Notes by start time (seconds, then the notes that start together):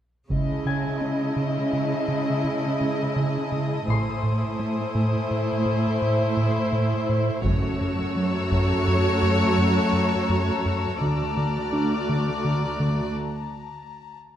0.30 C#2 C#3 G#3 E4 D#5 G#5 A5, taiko
0.66 C#3 G#5
1.01 C#4
1.36 C#3
1.73 C#3 D#6
2.08 C#3
2.44 C#3
2.81 C#3
3.16 C#3
3.52 C#3
3.88 A1 A2 A3 E4 C5 C6
4.23 A2
4.60 A3
4.95 A2
5.31 A2
5.66 A2
6.02 A2
6.37 A2
6.73 A2
7.09 A2
7.44 F#1 F#2 A3 F#4 C#5 A5 E6, taiko
7.81 F#2
8.15 F#3 A#5
8.51 F#2, taiko
8.87 F#2
9.23 F#2
9.58 F#2
9.93 F#2
10.30 F#2
10.66 F#2
11.01 D2 D3 A3 F#4 D5
11.37 D3
11.45 F6
11.73 D4
12.09 D3
12.45 D3
12.80 D3